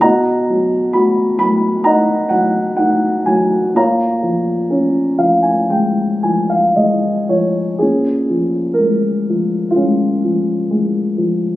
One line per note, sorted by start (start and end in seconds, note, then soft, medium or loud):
0.01 3.72 B2 medium
0.01 1.82 D#5 soft
0.01 1.82 F#5 medium
0.01 0.97 A#5 medium
0.50 1.37 F#3 soft
0.93 2.76 F#4 soft
0.93 1.37 B5 medium
1.38 2.29 F#3 soft
1.38 1.87 B5 medium
1.84 2.77 D#4 soft
1.84 3.72 D#5 medium
1.84 2.28 F#5 medium
1.84 2.33 A#5 medium
2.29 3.25 F#3 soft
2.29 2.75 F#5 medium
2.77 3.72 D#4 soft
2.77 3.28 F#5 medium
3.26 3.74 F#3 soft
3.26 3.72 G#5 medium
3.75 7.76 A#2 soft
3.75 6.74 C#5 soft
3.75 5.17 F5 soft
3.75 6.74 A#5 medium
4.23 5.17 F3 soft
4.70 6.73 C#4 soft
5.18 6.22 F3 soft
5.18 5.43 F5 soft
5.43 5.68 G#5 soft
5.70 6.75 G#3 soft
5.70 6.20 G5 soft
6.23 7.28 F3 soft
6.23 6.49 G#5 soft
6.50 6.75 F5 soft
6.76 7.77 G#3 soft
6.76 7.26 D#5 soft
7.29 7.78 F3 soft
7.29 7.76 C#5 soft
7.79 11.56 A#2 soft
7.79 9.71 C#4 soft
7.79 8.80 G#4 soft
8.30 9.28 F3 soft
8.74 9.76 A#4 medium
8.80 9.76 G#3 soft
9.29 10.22 F3 soft
9.71 11.56 F4 medium
9.76 10.69 G#3 soft
9.76 11.56 C#4 soft
10.24 11.16 F3 soft
10.71 11.56 G#3 soft
11.18 11.56 F3 soft